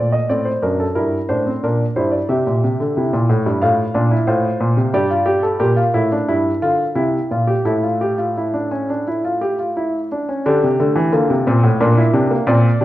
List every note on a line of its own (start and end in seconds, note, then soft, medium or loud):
0.00 0.18 A#2 medium
0.00 0.29 A3 medium
0.00 0.13 D5 medium
0.12 0.30 D#5 medium
0.29 0.51 A2 medium
0.29 0.51 C4 medium
0.29 0.47 D5 medium
0.45 0.63 C5 medium
0.62 0.84 F#2 medium
0.62 0.84 D4 medium
0.62 0.80 A#4 medium
0.80 0.97 A4 medium
0.95 1.17 G2 medium
0.95 1.17 E4 medium
0.95 1.17 A#4 medium
1.29 1.50 A2 medium
1.29 1.46 D4 medium
1.29 1.50 C5 medium
1.47 1.63 C4 medium
1.63 1.84 A#2 medium
1.63 1.84 D4 medium
1.63 1.84 A#4 medium
1.96 2.17 G2 medium
1.96 2.17 E4 medium
1.96 2.13 C5 medium
2.12 2.29 D5 medium
2.29 2.46 C3 medium
2.29 2.94 G4 medium
2.29 3.58 E5 medium
2.47 2.63 A#2 medium
2.64 2.80 C3 medium
2.80 2.96 D3 medium
2.97 3.13 C3 medium
2.97 3.61 E4 medium
3.13 3.29 A#2 medium
3.29 3.46 A2 medium
3.46 3.62 G2 medium
3.61 3.83 A2 medium
3.61 3.83 F4 medium
3.61 4.26 F5 medium
3.94 4.15 A#2 medium
3.94 4.11 D4 medium
4.11 4.28 E4 medium
4.27 4.48 A2 medium
4.27 4.92 F4 medium
4.27 4.92 C5 medium
4.60 4.77 A#2 medium
4.77 4.94 C3 medium
4.93 5.59 G2 medium
4.93 5.11 G4 medium
4.93 5.59 D5 medium
5.10 5.27 F4 medium
5.26 5.43 G4 medium
5.43 5.60 A4 medium
5.59 5.81 A#2 medium
5.59 5.77 G4 medium
5.59 7.61 A#4 medium
5.76 5.94 F4 medium
5.94 6.15 A2 medium
5.94 6.11 E4 medium
6.12 6.28 D4 medium
6.28 6.50 G2 medium
6.28 6.49 E4 medium
6.62 6.84 D3 medium
6.62 6.84 F4 medium
6.95 7.17 C3 medium
6.95 7.17 E4 medium
7.31 7.53 A#2 medium
7.31 7.48 F4 medium
7.48 7.65 G4 medium
7.65 10.06 A2 medium
7.65 7.83 E4 medium
7.65 10.06 A4 medium
7.83 8.00 F4 medium
8.01 8.18 G4 medium
8.18 8.36 F4 medium
8.37 8.54 E4 medium
8.54 8.71 D4 medium
8.71 8.88 C#4 medium
8.90 9.06 D4 medium
9.07 9.24 E4 medium
9.25 9.41 F4 medium
9.42 9.58 G4 medium
9.59 9.76 F4 medium
9.77 9.98 E4 medium
10.12 10.28 D4 medium
10.29 10.45 C#4 medium
10.45 10.62 D3 loud
10.45 10.67 D4 medium
10.45 11.11 G4 medium
10.63 10.79 C3 medium
10.79 10.96 D3 medium
10.79 11.00 A3 medium
10.95 11.12 E3 medium
11.12 11.29 D3 medium
11.12 11.34 A#3 medium
11.12 11.78 F4 medium
11.30 11.46 C3 medium
11.47 11.63 A#2 medium
11.47 11.68 C4 medium
11.63 11.80 A2 medium
11.81 12.01 A#2 medium
11.81 11.97 D4 medium
11.81 12.46 A#4 medium
11.97 12.14 E4 medium
12.14 12.35 C3 loud
12.14 12.30 D4 medium
12.31 12.47 A#3 medium
12.47 12.68 A#2 medium
12.47 12.68 C4 medium
12.47 12.85 D5 medium
12.81 12.85 C3 medium
12.81 12.85 D4 medium